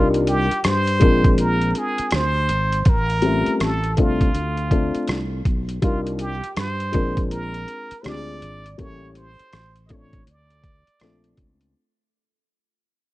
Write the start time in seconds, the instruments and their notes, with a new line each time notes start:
Already playing: fretless electric bass C2, upright piano G3 D4 D#4 F4 A#4
0.14 closed hi-hat
0.27 muted trumpet G4, closed hi-hat
0.51 closed hi-hat
0.64 fretless electric bass G2, muted trumpet C5, cross-stick, closed hi-hat
0.87 closed hi-hat
1.00 fretless electric bass A#1, upright piano G#3 C4 D4 F4 A#4, kick, closed hi-hat
1.24 kick, closed hi-hat
1.38 muted trumpet A#4, closed hi-hat
1.61 closed hi-hat
1.75 muted trumpet G#4, closed hi-hat
1.98 muted fretless electric bass stroke, closed hi-hat
2.11 fretless electric bass D2, cross-stick, closed hi-hat
2.16 muted trumpet C5
2.49 fretless electric bass G#1, closed hi-hat
2.72 closed hi-hat
2.85 fretless electric bass A1, muted trumpet A#4, kick, closed hi-hat
3.10 closed hi-hat
3.22 upright piano G3 A3 C4 C#4 F4, closed hi-hat
3.46 closed hi-hat
3.60 fretless electric bass A1, muted trumpet A4, cross-stick, closed hi-hat
3.84 closed hi-hat
3.97 fretless electric bass C2, upright piano A3 C4 D4 F4 A4, muted trumpet F4, kick, closed hi-hat
4.21 kick, closed hi-hat
4.34 fretless electric bass D2, closed hi-hat
4.57 closed hi-hat
4.70 upright piano A3 C4 D4 F4 A4, kick, closed hi-hat
4.95 muted fretless electric bass stroke, closed hi-hat
5.08 fretless electric bass C2, cross-stick, closed hi-hat
5.45 fretless electric bass B1, kick, closed hi-hat
5.69 closed hi-hat
5.82 fretless electric bass C2, upright piano G3 D4 D#4 F4 A#4, muted trumpet F4, kick, closed hi-hat
6.07 closed hi-hat
6.19 muted trumpet G4, closed hi-hat
6.43 muted fretless electric bass stroke, closed hi-hat
6.57 fretless electric bass G2, muted trumpet C5, cross-stick, closed hi-hat
6.80 closed hi-hat
6.92 fretless electric bass A#1, upright piano G#3 C4 D4 F4 A#4, kick, closed hi-hat
7.17 kick, closed hi-hat
7.31 muted trumpet A#4, closed hi-hat
7.54 closed hi-hat
7.68 closed hi-hat
7.91 muted fretless electric bass stroke, closed hi-hat
8.03 fretless electric bass D2, upright piano G#3 C4 D4 F4 G4, muted trumpet D5, cross-stick, closed hi-hat
8.12 upright piano G#4
8.42 fretless electric bass G#1, closed hi-hat
8.66 closed hi-hat
8.78 fretless electric bass A1, upright piano G3 A#3 C#4 E4 A4, muted trumpet C#5, kick, closed hi-hat
9.15 muted trumpet C5, closed hi-hat
9.39 muted fretless electric bass stroke, closed hi-hat
9.53 fretless electric bass A1, cross-stick, closed hi-hat
9.76 closed hi-hat
9.87 upright piano A3 C4 D4 F4, muted trumpet D#5, kick, closed hi-hat
9.91 upright piano A4, muted trumpet C#5
10.13 kick, closed hi-hat
10.27 fretless electric bass D2, closed hi-hat
10.31 muted trumpet D5
10.50 closed hi-hat
10.64 kick, closed hi-hat
10.87 muted fretless electric bass stroke, closed hi-hat
11.00 fretless electric bass A#1, upright piano A3 C4 D4 F4 A4, cross-stick, closed hi-hat
11.24 closed hi-hat
11.37 fretless electric bass C#2, kick, closed hi-hat
11.61 closed hi-hat